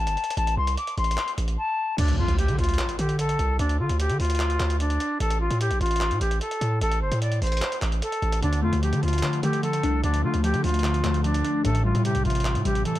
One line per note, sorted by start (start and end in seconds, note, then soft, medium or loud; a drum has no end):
0.00 0.35 A5 medium
0.07 0.17 G1 loud
0.07 closed hi-hat medium
0.17 closed hi-hat soft
0.24 closed hi-hat medium
0.30 closed hi-hat medium
0.37 0.56 A1 loud
0.37 0.55 A5 medium
0.37 closed hi-hat medium
0.47 closed hi-hat medium
0.57 0.77 C2 loud
0.57 0.75 C6 medium
0.67 closed hi-hat medium
0.77 0.95 D6 medium
0.77 closed hi-hat medium
0.87 closed hi-hat medium
0.97 1.17 A1 loud
0.97 1.31 C6 medium
0.97 closed hi-hat soft
1.04 closed hi-hat medium
1.11 closed hi-hat medium
1.18 clap loud
1.18 closed hi-hat medium
1.28 closed hi-hat medium
1.38 1.57 A1 loud
1.38 closed hi-hat medium
1.48 closed hi-hat medium
1.58 1.96 A5 medium
1.98 2.20 D2 loud
1.98 2.16 D4 medium
1.98 closed hi-hat medium
1.98 crash loud
1.98 impact medium
2.08 closed hi-hat medium
2.18 2.28 F2 loud
2.18 2.36 F4 medium
2.28 2.50 D2 loud
2.28 closed hi-hat medium
2.38 2.56 G4 medium
2.38 closed hi-hat medium
2.48 2.58 D3 loud
2.48 closed hi-hat medium
2.59 2.78 D2 loud
2.59 2.96 F4 medium
2.59 closed hi-hat soft
2.64 closed hi-hat soft
2.69 closed hi-hat medium
2.74 closed hi-hat medium
2.79 clap loud
2.79 closed hi-hat medium
2.89 closed hi-hat medium
2.99 3.38 D3 loud
2.99 3.17 G4 medium
2.99 closed hi-hat medium
3.09 closed hi-hat medium
3.19 3.57 A4 medium
3.19 closed hi-hat medium
3.29 closed hi-hat medium
3.39 3.58 C2 loud
3.39 closed hi-hat medium
3.59 3.81 D2 loud
3.59 3.77 D4 loud
3.59 closed hi-hat medium
3.69 closed hi-hat medium
3.79 3.89 D3 loud
3.79 3.97 F4 medium
3.89 4.11 D2 loud
3.89 closed hi-hat medium
4.00 4.17 G4 medium
4.00 closed hi-hat medium
4.09 4.19 D3 loud
4.09 closed hi-hat medium
4.20 4.58 D2 loud
4.20 4.77 F4 medium
4.20 closed hi-hat soft
4.20 open hi-hat medium
4.25 closed hi-hat medium
4.30 closed hi-hat medium
4.35 closed hi-hat medium
4.40 clap loud
4.40 closed hi-hat medium
4.50 closed hi-hat medium
4.60 4.99 D2 loud
4.60 clap loud
4.60 closed hi-hat medium
4.70 closed hi-hat medium
4.80 5.18 D4 medium
4.80 closed hi-hat medium
4.90 closed hi-hat medium
5.00 closed hi-hat medium
5.20 5.49 A1 loud
5.20 5.38 A4 medium
5.20 closed hi-hat medium
5.30 closed hi-hat medium
5.40 5.58 F4 medium
5.51 5.72 A2 loud
5.51 closed hi-hat medium
5.61 5.78 G4 medium
5.61 closed hi-hat medium
5.71 5.80 A#1 loud
5.71 closed hi-hat medium
5.81 6.12 A1 loud
5.81 6.19 F4 medium
5.81 closed hi-hat soft
5.86 closed hi-hat medium
5.91 closed hi-hat medium
5.96 closed hi-hat medium
6.01 clap loud
6.01 closed hi-hat medium
6.11 6.21 A2 loud
6.11 closed hi-hat medium
6.21 6.40 A1 loud
6.21 6.39 G4 medium
6.21 closed hi-hat medium
6.31 closed hi-hat medium
6.41 6.79 A4 medium
6.41 closed hi-hat medium
6.51 closed hi-hat medium
6.61 6.81 A2 loud
6.61 closed hi-hat medium
6.81 7.03 A1 loud
6.81 6.99 A4 loud
6.81 closed hi-hat medium
6.92 closed hi-hat medium
7.02 7.11 G1 loud
7.02 7.19 C5 medium
7.12 7.41 A2 loud
7.12 closed hi-hat medium
7.22 7.39 D5 medium
7.22 closed hi-hat medium
7.32 closed hi-hat medium
7.42 7.61 A1 loud
7.42 7.77 C5 medium
7.42 closed hi-hat soft
7.42 open hi-hat medium
7.47 closed hi-hat soft
7.52 closed hi-hat medium
7.57 closed hi-hat medium
7.62 clap loud
7.62 closed hi-hat medium
7.72 closed hi-hat medium
7.82 8.01 A1 loud
7.82 clap loud
7.82 closed hi-hat medium
7.92 closed hi-hat medium
8.02 8.40 A4 medium
8.02 closed hi-hat medium
8.12 closed hi-hat medium
8.22 8.42 A1 loud
8.22 closed hi-hat soft
8.32 closed hi-hat medium
8.42 8.64 D2 loud
8.42 9.02 D3 loud
8.42 8.60 D4 medium
8.42 closed hi-hat medium
8.53 closed hi-hat medium
8.62 8.72 F2 loud
8.62 9.42 A3 medium
8.62 8.80 F4 medium
8.73 8.94 D2 loud
8.73 closed hi-hat medium
8.83 9.62 F3 medium
8.83 9.01 G4 medium
8.83 closed hi-hat medium
8.93 9.02 D3 loud
8.93 closed hi-hat medium
9.03 9.22 D2 loud
9.03 9.22 D3 medium
9.03 9.41 F4 medium
9.03 closed hi-hat soft
9.08 closed hi-hat soft
9.13 closed hi-hat medium
9.18 closed hi-hat medium
9.23 10.02 D3 medium
9.23 clap loud
9.23 closed hi-hat medium
9.33 closed hi-hat medium
9.43 9.82 D3 loud
9.43 10.23 A3 medium
9.43 9.61 G4 medium
9.43 closed hi-hat medium
9.53 closed hi-hat medium
9.63 10.42 F3 medium
9.63 10.01 A4 medium
9.63 closed hi-hat medium
9.73 closed hi-hat medium
9.83 10.03 C2 loud
9.83 10.84 D4 medium
9.83 closed hi-hat medium
10.03 10.25 D2 loud
10.03 10.63 D3 medium
10.03 10.21 D4 loud
10.03 closed hi-hat medium
10.14 closed hi-hat medium
10.24 10.33 D3 loud
10.24 11.03 A3 medium
10.24 10.41 F4 medium
10.34 10.55 D2 loud
10.34 closed hi-hat medium
10.44 11.23 F3 medium
10.44 10.62 G4 medium
10.44 closed hi-hat medium
10.54 10.63 D3 loud
10.54 closed hi-hat medium
10.64 11.03 D2 loud
10.64 10.83 D3 medium
10.64 11.21 F4 medium
10.64 closed hi-hat soft
10.64 open hi-hat medium
10.69 closed hi-hat medium
10.74 closed hi-hat medium
10.79 closed hi-hat medium
10.84 11.65 D3 medium
10.84 clap loud
10.84 closed hi-hat medium
10.94 closed hi-hat medium
11.04 11.43 D2 loud
11.04 11.65 A3 medium
11.04 clap loud
11.04 closed hi-hat medium
11.14 closed hi-hat medium
11.24 11.65 F3 medium
11.24 11.62 D4 medium
11.24 closed hi-hat medium
11.34 closed hi-hat medium
11.44 11.65 D4 medium
11.44 closed hi-hat medium
11.65 11.94 A1 loud
11.65 12.24 A2 loud
11.65 11.82 A4 medium
11.65 closed hi-hat medium
11.75 closed hi-hat medium
11.85 12.64 G3 medium
11.85 12.03 F4 medium
11.95 12.16 A2 loud
11.95 closed hi-hat medium
12.05 12.99 C3 medium
12.05 12.23 G4 medium
12.05 closed hi-hat medium
12.15 12.25 A#1 loud
12.15 closed hi-hat medium
12.25 12.57 A1 loud
12.25 12.44 A2 medium
12.25 12.63 F4 medium
12.25 closed hi-hat soft
12.30 closed hi-hat medium
12.35 closed hi-hat medium
12.40 closed hi-hat medium
12.45 12.99 A2 medium
12.45 clap loud
12.45 closed hi-hat medium
12.55 12.65 A2 loud
12.55 closed hi-hat medium
12.65 12.85 A1 loud
12.65 12.99 G3 medium
12.65 12.83 G4 medium
12.65 closed hi-hat medium
12.75 closed hi-hat medium
12.85 12.99 E3 medium
12.85 12.99 A4 medium
12.85 closed hi-hat medium
12.95 closed hi-hat medium